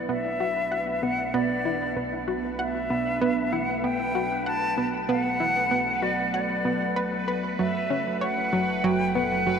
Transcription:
Already playing: B1 F#3 A3 B3 D4 A4 B4
0.09 B3 E5
0.40 F#4
0.72 F#5
1.03 B3 F#5
1.34 B3 D5
1.65 E4
1.97 B3
2.28 F#4
2.59 E5 F#5
2.90 B3
3.21 B3
3.53 E4 F#5
3.84 B3 G5
4.15 F#4
4.46 F#5 A5
4.78 B3
5.09 B3 F#5
5.40 E4
5.71 B3
6.02 F#4 D5
6.34 D5 F#5
6.65 B3
6.96 B4
7.28 B4
7.59 F#3 E5
7.90 C#4
8.14 E4
8.21 C#5 F#5
8.53 F#3
8.73 C#3
8.84 F#3 G5
9.15 B3 F#5
9.47 F#3

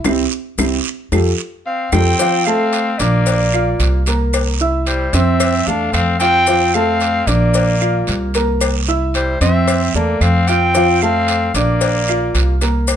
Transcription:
0.04 C2 C4 E4 G4, low bongo, long guiro, claves, maracas
0.58 C2 C4 E4 G4, low bongo, long guiro, claves, maracas
1.12 F2 F4 G4 A4, low bongo, long guiro, claves, maracas
1.66 C4 F5
1.92 F2 C4 F4 G4 A4 G5, low bongo, long guiro, claves, maracas
2.19 F3 F4 F5, cowbell, long guiro, maracas
2.45 A3 C4 A4 F5 A5, claves, maracas
2.73 cowbell, short guiro, maracas
2.98 A#1 A#3 D4 D5 D6, cowbell, short guiro, maracas
3.26 cowbell, long guiro, maracas
3.53 F4 F5 F6, claves, maracas
3.80 C2, cowbell, short guiro, maracas
4.06 A#3 A#4 A#5, cowbell, short guiro, maracas
4.33 cowbell, long guiro, claves, maracas
4.60 E4 E5 E6, maracas
4.87 G3 C5, cowbell, short guiro, maracas
5.13 F2 C4 C5 E5 C6, cowbell, short guiro, maracas
5.40 cowbell, long guiro, claves, maracas
5.66 E2 A3 D4 A4 F5 A5, maracas
5.92 F2 C4 F5, cowbell, short guiro, claves, maracas
6.19 C4 F4 F5 G5 F6, cowbell, short guiro, maracas
6.47 F3 F4 F5, cowbell, long guiro, maracas
6.73 A3 C4 A4 F5 A5, claves, maracas
7.00 cowbell, short guiro, maracas
7.26 A#1 A#3 D4 D5 D6, cowbell, short guiro, maracas
7.54 cowbell, long guiro, maracas
7.81 F4 F5 F6, claves, maracas
8.07 C2, cowbell, short guiro, maracas
8.34 A#3 A#4 A#5, cowbell, short guiro, maracas
8.61 cowbell, long guiro, claves, maracas
8.88 E4 E5 E6, maracas
9.14 G3 C5, cowbell, short guiro, maracas
9.41 F2 C4 C5 E5 C6, cowbell, short guiro, maracas
9.68 cowbell, long guiro, claves, maracas
9.94 E2 A3 A#3 A4 D5 A5, maracas
10.21 F2 C4 F5, cowbell, short guiro, claves, maracas
10.48 C4 F4 F5 G5 F6, cowbell, short guiro, maracas
10.75 F3 F4 F5, cowbell, long guiro, maracas
11.01 A3 C4 A4 F5 A5, claves, maracas
11.28 cowbell, short guiro, maracas
11.54 A#1 A#3 D4 D5 D6, cowbell, short guiro, maracas
11.81 cowbell, long guiro, maracas
12.08 F4 F5 F6, claves, maracas
12.35 C2, cowbell, short guiro, maracas
12.61 A#3 A#4 A#5, cowbell, short guiro, maracas
12.87 cowbell, long guiro, claves, maracas

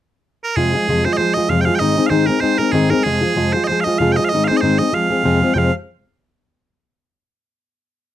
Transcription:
0.44 A#4
0.56 F2 C3 F3 G#3 F4 G#4
0.74 F3 G#3 F4 G#4
0.89 F2 C3 F3 G#3 F4 G#4
1.05 F3 G#3 F4 G#4 C5
1.13 D#5
1.17 F3 G#3 F4 G#4 C5
1.34 F4 G#4 D#5
1.38 F3 G#3
1.49 F2 C3 F3 G#3 F4 G#4 F5
1.61 G5
1.65 G#3 F4 G#4 F5
1.70 F3
1.75 G5
1.79 G#2 D#3 G#3 C4 D#4 G#4 D#5
1.97 G#3 C4 D#4 G#4
2.06 G#2 D#3 G#3 C5 F5
2.11 C4 D#4 G#4
2.26 G#3 C4 D#4 G#4 A#4
2.40 G#3 C4 D#4 G#4 C5
2.58 G#3 C4 D#4 G#4 A#4
2.72 G#2 D#3 G#3 C4 D#4 G#4
2.90 G#3 C4 D#4 G#4 A#4
3.03 F2 C3 F3 G#3 F4 G#4
3.22 F3 G#3 F4 G#4
3.36 F2 C3 F3 G#3 F4 G#4
3.53 G#3 F4 G#4 C5
3.57 F3
3.64 C5 D#5
3.69 F3 G#3 F4 G#4
3.80 D#5 F5
3.87 F3 G#3 F4 G#4
3.98 F2 C3 F3 G#3 F4 G#4 F5
4.12 G5
4.16 F4 G#4 D#5
4.21 F3 G#3 F5
4.29 D#5
4.33 G#2 D#3 G#3 C4 D#4 G#4
4.44 C5 F5
4.50 G#3 C4 D#4 G#4
4.57 C5 D#5
4.62 G#2 D#3 G#3 C4 D#4 G#4
4.78 C4 D#4 G#4 D#5
4.82 G#3
4.93 F3 G#3 C4 G#4 F5
5.10 F3 G#3 C4 G#4
5.23 F2 C3 F3 G#3 C4 G#4
5.42 F3 G#3 C4 G#4
5.54 F2 C3 F3 G#3 C4 G#4 G5
5.58 F5

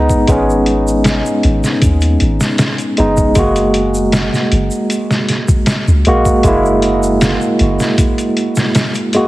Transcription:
Already playing: G#3 B3 D#4
0.10 kick, shaker
0.27 G#1 G#3 B3 C#4, kick, closed hi-hat, shaker
0.50 shaker
0.66 closed hi-hat
0.88 shaker
1.04 snare, closed hi-hat, shaker
1.26 shaker
1.43 G#1, closed hi-hat
1.64 snare, shaker
1.82 D#2, kick, closed hi-hat, shaker
2.01 closed hi-hat, shaker
2.20 G#1, closed hi-hat
2.41 snare, shaker
2.58 snare, closed hi-hat, shaker
2.78 closed hi-hat, shaker
2.97 F#1 G#3 B3 D#4, closed hi-hat
3.17 kick, shaker
3.35 F#1 G#3 A#3 F#4, kick, closed hi-hat, shaker
3.56 closed hi-hat, shaker
3.74 closed hi-hat
3.95 shaker
4.12 snare, closed hi-hat, shaker
4.34 snare, shaker
4.52 F#1, closed hi-hat
4.71 shaker
4.90 closed hi-hat, shaker
5.11 snare, shaker
5.28 snare, closed hi-hat
5.48 kick, shaker
5.66 snare, closed hi-hat, shaker
5.88 C#2, shaker
6.05 A#1 G#3 A#3 F#4, closed hi-hat
6.25 kick, shaker
6.43 F#1 G#3 A#3, kick, closed hi-hat, shaker
6.48 E4
6.65 shaker
6.82 closed hi-hat
7.03 shaker
7.21 snare, closed hi-hat, shaker
7.41 shaker
7.59 F#1, closed hi-hat
7.80 snare, shaker
7.98 kick, closed hi-hat, shaker
8.18 closed hi-hat, shaker
8.37 closed hi-hat
8.56 snare, shaker
8.75 snare, closed hi-hat, shaker
8.94 closed hi-hat, shaker
9.13 G#3 A#3 F#4, closed hi-hat

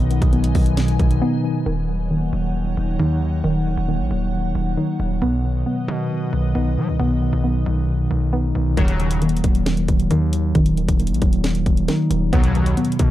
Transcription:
Already playing: B1 B2 D#3 F#3 B3 D#4 B4 D#5 G#5
0.11 D#3, closed hi-hat
0.22 B1, kick, closed hi-hat
0.33 F#3 B3, closed hi-hat
0.44 closed hi-hat
0.55 B1 D#3, kick, open hi-hat
0.66 closed hi-hat
0.77 B2, snare, closed hi-hat
0.88 closed hi-hat
0.99 B1 D#3, kick, closed hi-hat
1.11 closed hi-hat
1.22 B3 D#4
1.44 D#3
1.66 D#1 D#3 D#4 C#5 F#5
1.89 F#3
2.11 D#3 A#3
2.33 D#1 F#3
2.55 D#3
2.77 D#1 F#3
2.99 D#2 D#3 D#4
3.22 F#3
3.44 D#1 D#3
3.66 F#3
3.77 D#1
3.88 D#3 A#3
4.00 A#1
4.11 D#1 F#3
4.33 D#3
4.55 D#1 F#3
4.77 D#3 D#4
5.00 D#1 F#3
5.22 B1 B2 B3 B4 D#5
5.44 D#3
5.66 F#3 B3
5.88 B2 D#3
6.11 B2
6.33 B1 D#3
6.55 B1 B3 D#4
6.77 D#3 F#3
6.88 B1
6.99 B1 B2 B3
7.22 D#3
7.33 B1
7.44 F#3 B3
7.66 B1 D#3
7.89 B2
8.11 B1 D#3
8.33 B3 D#4
8.55 B1 D#3
8.77 D#1 D#2 C#3 D#3 F#3, kick, closed hi-hat
8.88 closed hi-hat
9.00 F#3, closed hi-hat
9.11 closed hi-hat
9.22 D#3 A#3, closed hi-hat
9.29 closed hi-hat
9.37 closed hi-hat
9.44 D#1 F#3, kick, closed hi-hat
9.55 closed hi-hat
9.66 D#3, snare, closed hi-hat
9.77 closed hi-hat
9.88 D#1 F#3, kick, closed hi-hat
10.00 closed hi-hat
10.11 D#2 D#3 D#4, closed hi-hat
10.33 F#3, closed hi-hat
10.55 D#1 D#3, kick, closed hi-hat
10.66 closed hi-hat
10.77 F#3, closed hi-hat
10.88 D#1, kick, closed hi-hat
10.99 D#3 A#3, closed hi-hat
11.07 A#1, closed hi-hat
11.14 closed hi-hat
11.22 D#1 F#3, kick, closed hi-hat
11.33 closed hi-hat
11.44 D#3, snare, closed hi-hat
11.55 closed hi-hat
11.66 D#1 F#3, kick, closed hi-hat
11.77 closed hi-hat
11.88 D#3 D#4, snare, closed hi-hat
12.11 D#1 F#3, closed hi-hat
12.33 B1 D#2 B2 F#3 B3, kick, closed hi-hat
12.44 closed hi-hat
12.55 D#3, closed hi-hat
12.66 closed hi-hat
12.77 F#3 B3, closed hi-hat
12.85 closed hi-hat
12.92 closed hi-hat
12.99 B2 D#3, kick, closed hi-hat

